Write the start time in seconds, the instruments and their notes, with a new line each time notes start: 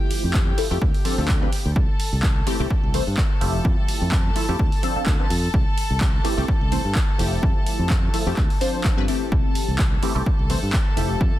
Already playing: analog polysynth F3 A3 E4 G4, violin section G4 G5
0.11 open hi-hat
0.24 fingered electric bass F2
0.34 kick, clap
0.57 analog polysynth F3 A3 E4 A4, muted fingered electric bass stroke, open hi-hat
0.70 fingered electric bass F2, analog polysynth F3 A3 E4 G4
0.82 fingered electric bass D2, kick
0.94 open hi-hat
1.05 analog polysynth F3 C4 D4 A4, open hi-hat
1.18 fingered electric bass D2, analog polysynth F3 C4 D4 A4
1.28 kick, clap
1.41 analog polysynth F3 C4 D4 B4
1.53 muted fingered electric bass stroke, open hi-hat
1.65 fingered electric bass D2
1.76 violin section A4 A5, kick
2.00 open hi-hat
2.13 fingered electric bass C2
2.23 kick, clap
2.46 analog polysynth E3 A3 C4 G4, muted fingered electric bass stroke, open hi-hat
2.60 fingered electric bass C2, analog polysynth E3 A3 C4 G4
2.70 kick
2.83 fingered electric bass C2
2.94 analog polysynth E3 A3 C4 C5, open hi-hat
3.07 fingered electric bass G2
3.17 kick, clap
3.41 fingered electric bass F1, analog polysynth F3 A3 E4 G4, open hi-hat
3.65 fingered electric bass F2, kick
3.88 open hi-hat
4.01 fingered electric bass F2
4.12 kick, clap
4.35 analog polysynth F3 A3 E4 A4, muted fingered electric bass stroke, open hi-hat
4.49 fingered electric bass F2, analog polysynth F3 A3 E4 G4
4.59 fingered electric bass D2, kick
4.72 open hi-hat
4.83 analog polysynth F3 C4 D4 A4, open hi-hat
4.96 analog polysynth F3 C4 D4 A4, muted fingered electric bass stroke
5.06 fingered electric bass D2, kick, clap
5.19 analog polysynth F3 C4 D4 B4
5.30 fingered electric bass F2, open hi-hat
5.54 fingered electric bass C2, kick
5.78 open hi-hat
5.90 fingered electric bass C2
6.01 kick, clap
6.24 analog polysynth E3 A3 C4 G4, muted fingered electric bass stroke, open hi-hat
6.37 fingered electric bass C2, analog polysynth E3 A3 C4 G4
6.48 kick
6.61 fingered electric bass C2
6.72 analog polysynth E3 A3 C4 C5, open hi-hat
6.85 fingered electric bass G2
6.95 kick, clap
7.18 fingered electric bass F1, analog polysynth F3 A3 E4 G4, open hi-hat
7.43 fingered electric bass F2, kick
7.66 open hi-hat
7.79 fingered electric bass F2
7.90 kick, clap
8.13 analog polysynth F3 A3 E4 A4, muted fingered electric bass stroke, open hi-hat
8.26 fingered electric bass F2, analog polysynth F3 A3 E4 G4
8.37 fingered electric bass D2, kick, clap
8.50 open hi-hat
8.61 analog polysynth F3 C4 D4 C5, open hi-hat
8.84 kick, clap
8.97 fingered electric bass G2, analog polysynth F3 C4 D4 B4
9.08 analog polysynth E3 A3 C4 G4, open hi-hat
9.32 fingered electric bass C2, violin section A4 A5, kick
9.55 open hi-hat
9.68 fingered electric bass C2
9.79 kick, clap
10.03 analog polysynth E3 A3 C4 G4, muted fingered electric bass stroke, open hi-hat
10.15 fingered electric bass C2, analog polysynth E3 A3 C4 G4
10.26 kick
10.39 fingered electric bass C2
10.50 analog polysynth E3 A3 C4 C5, open hi-hat
10.63 fingered electric bass G2
10.73 kick, clap
10.96 fingered electric bass F1, analog polysynth F3 A3 E4 G4, open hi-hat
11.21 fingered electric bass F2, kick